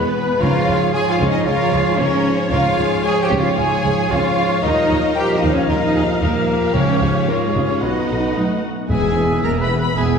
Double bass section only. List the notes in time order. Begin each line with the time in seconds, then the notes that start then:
0.41 C#2
0.67 C#2
1.19 C#2
1.46 C#2
1.72 C#2
1.99 C#2
2.51 C#2
2.78 C#2
3.32 C#2
3.58 C#2
3.84 C#2
4.10 C#2
4.63 D#2
4.89 D#2
5.42 D#2
5.68 D#2
5.95 D#2
6.22 D#2
6.74 C#2
7.01 C#2
7.54 C#2
7.82 B1
8.10 B1
8.37 B1
8.91 E1
9.44 E1
9.97 E1